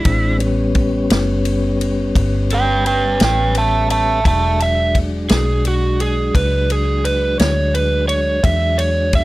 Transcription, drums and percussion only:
0.05 kick, ride
0.40 ride
0.75 kick, ride
1.10 snare, ride
1.45 ride
1.81 ride
2.15 kick, ride
2.50 ride
2.86 ride
3.20 snare, ride
3.55 ride
3.90 ride
4.25 kick, ride
4.60 ride
4.95 kick, ride
5.29 snare, ride
5.65 ride
6.00 ride
6.35 kick, ride
6.70 ride
7.05 ride
7.39 snare, ride
7.75 ride
8.09 ride
8.44 kick, ride
8.79 ride
9.13 kick, ride

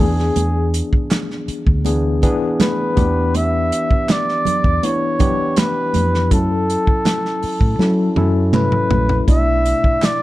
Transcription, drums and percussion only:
0.19 snare
0.36 closed hi-hat, muted conga
0.74 closed hi-hat
0.93 kick
1.11 snare, clap, closed hi-hat, high conga
1.31 snare
1.48 closed hi-hat
1.67 kick
1.85 closed hi-hat, muted conga
2.22 kick, closed hi-hat, muted conga
2.60 snare, clap, closed hi-hat, high conga
2.97 kick, closed hi-hat, high conga
3.35 closed hi-hat, muted conga
3.72 closed hi-hat
3.91 kick
4.09 snare, clap, closed hi-hat, high conga
4.28 snare
4.45 closed hi-hat, low conga
4.64 kick
4.83 closed hi-hat, muted conga
5.19 kick, closed hi-hat, low conga
5.57 snare, clap, closed hi-hat, high conga
5.94 closed hi-hat, high conga
6.14 snare
6.31 kick, closed hi-hat, muted conga
6.70 closed hi-hat
6.87 kick
7.05 snare, clap, closed hi-hat, high conga
7.25 snare
7.43 open hi-hat
7.61 kick
7.79 snare, muted conga
8.16 high tom, muted conga
8.53 clap, mid tom, high conga
8.72 mid tom
8.91 floor tom, high conga
9.09 floor tom
9.28 kick, closed hi-hat, muted conga
9.66 closed hi-hat
9.84 kick
10.02 snare, clap, closed hi-hat, high conga

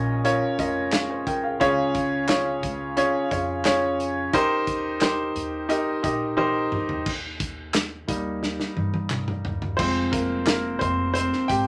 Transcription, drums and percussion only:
0.25 closed hi-hat
0.59 kick, closed hi-hat
0.92 snare, clap, closed hi-hat
1.27 kick, closed hi-hat
1.61 kick, closed hi-hat
1.95 kick, closed hi-hat
2.29 snare, clap, closed hi-hat
2.63 kick, closed hi-hat
2.97 closed hi-hat
3.31 kick, closed hi-hat
3.65 snare, clap, closed hi-hat
4.00 closed hi-hat
4.33 kick, closed hi-hat
4.67 kick, closed hi-hat
5.01 snare, clap, closed hi-hat
5.36 closed hi-hat
5.70 closed hi-hat
6.04 kick, closed hi-hat
6.38 high tom
6.72 mid tom
6.89 floor tom
7.06 kick, crash
7.40 kick, closed hi-hat
7.74 snare, clap, closed hi-hat
8.09 kick, closed hi-hat
8.43 snare
8.60 snare
8.77 high tom
8.94 high tom
9.10 clap, mid tom
9.28 mid tom
9.45 floor tom
9.62 floor tom
9.79 kick, crash
10.13 kick, closed hi-hat
10.47 snare, clap, closed hi-hat
10.81 kick, closed hi-hat
11.15 closed hi-hat
11.33 snare
11.49 kick, closed hi-hat

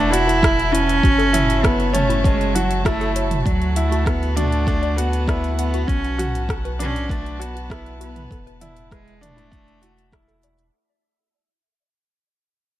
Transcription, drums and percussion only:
0.14 closed hi-hat
0.29 closed hi-hat
0.43 kick, cross-stick, closed hi-hat
0.59 closed hi-hat
0.75 closed hi-hat
0.89 closed hi-hat
1.03 kick, closed hi-hat
1.20 closed hi-hat
1.34 closed hi-hat, mid tom
1.50 closed hi-hat
1.64 kick, cross-stick, closed hi-hat
1.80 closed hi-hat
1.95 closed hi-hat, mid tom
2.10 closed hi-hat
2.25 kick, closed hi-hat
2.41 closed hi-hat
2.56 closed hi-hat
2.71 closed hi-hat
2.85 kick, cross-stick, closed hi-hat
3.01 closed hi-hat
3.16 closed hi-hat
3.31 closed hi-hat, mid tom
3.46 kick, closed hi-hat
3.62 closed hi-hat
3.76 closed hi-hat
3.92 closed hi-hat
4.06 kick, cross-stick, closed hi-hat
4.23 closed hi-hat
4.37 closed hi-hat, mid tom
4.52 closed hi-hat
4.67 kick, closed hi-hat
4.83 closed hi-hat
4.98 closed hi-hat
5.13 closed hi-hat
5.28 kick, cross-stick, closed hi-hat
5.44 closed hi-hat
5.59 closed hi-hat
5.74 closed hi-hat
5.88 kick, closed hi-hat
6.04 closed hi-hat
6.19 closed hi-hat, mid tom
6.35 closed hi-hat
6.49 kick, cross-stick, closed hi-hat
6.65 closed hi-hat
6.80 closed hi-hat, mid tom
6.96 closed hi-hat
7.09 kick, closed hi-hat
7.26 closed hi-hat
7.42 closed hi-hat
7.57 closed hi-hat
7.70 kick, cross-stick, closed hi-hat
7.86 closed hi-hat
8.01 closed hi-hat
8.16 closed hi-hat, mid tom
8.31 kick, closed hi-hat
8.47 closed hi-hat
8.61 closed hi-hat, mid tom
8.77 closed hi-hat
8.91 kick, cross-stick, closed hi-hat
9.08 closed hi-hat
9.23 closed hi-hat, mid tom
9.38 closed hi-hat
9.52 kick, closed hi-hat
9.68 closed hi-hat
9.83 closed hi-hat
9.98 closed hi-hat
10.12 kick, cross-stick, closed hi-hat
10.29 closed hi-hat
10.43 closed hi-hat
10.59 closed hi-hat

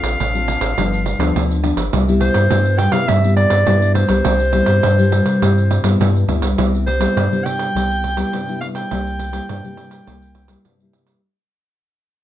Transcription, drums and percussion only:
0.04 pandeiro
0.20 pandeiro
0.35 pandeiro
0.48 pandeiro
0.61 pandeiro
0.78 pandeiro
0.94 pandeiro
1.06 pandeiro
1.20 pandeiro
1.36 pandeiro
1.51 pandeiro
1.64 pandeiro
1.77 pandeiro
1.93 pandeiro
2.08 pandeiro
2.21 pandeiro
2.34 pandeiro
2.50 pandeiro
2.65 pandeiro
2.78 pandeiro
2.92 pandeiro
3.08 pandeiro
3.24 pandeiro
3.37 pandeiro
3.50 pandeiro
3.66 pandeiro
3.82 pandeiro
3.95 pandeiro
4.09 pandeiro
4.25 pandeiro
4.39 pandeiro
4.53 pandeiro
4.66 pandeiro
4.83 pandeiro
4.99 pandeiro
5.12 pandeiro
5.26 pandeiro
5.42 pandeiro
5.58 pandeiro
5.71 pandeiro
5.84 pandeiro
6.01 pandeiro
6.16 pandeiro
6.29 pandeiro
6.42 pandeiro
6.58 pandeiro
6.74 pandeiro
6.87 pandeiro
7.01 pandeiro
7.17 pandeiro
7.33 pandeiro
7.46 pandeiro
7.59 pandeiro
7.76 pandeiro
7.91 pandeiro
8.04 pandeiro
8.17 pandeiro
8.33 pandeiro
8.49 pandeiro
8.61 pandeiro
8.75 pandeiro
8.91 pandeiro
9.07 pandeiro
9.19 pandeiro
9.33 pandeiro
9.49 pandeiro
9.65 pandeiro
9.77 pandeiro
9.91 pandeiro
10.07 pandeiro
10.22 pandeiro
10.35 pandeiro
10.48 pandeiro
10.65 pandeiro
10.80 pandeiro
10.93 pandeiro
11.07 pandeiro

